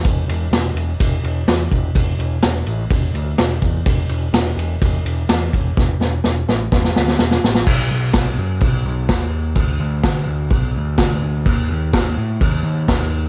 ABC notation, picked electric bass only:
X:1
M:4/4
L:1/8
Q:1/4=126
K:Bdor
V:1 name="Picked electric bass" clef=bass
E,,, E,,, E,,, E,,, E,,, E,,, E,, E,,, | E,,, E,,, E,,, A,,, E,,, D,, E,,, E,, | E,,, E,,, E,,, E,,, E,,, E,,, E,, E,,, | E,,, E,,, E,,, A,,, E,,, D,, E,,, A,,, |
B,,, B,,, B,,, F,, B,,, B,,, ^D,,2 | D,, D,, D,, D,, B,,, D,, D,, D,, | ^D,, D,, D,, A,, D,, D,, D,,2 |]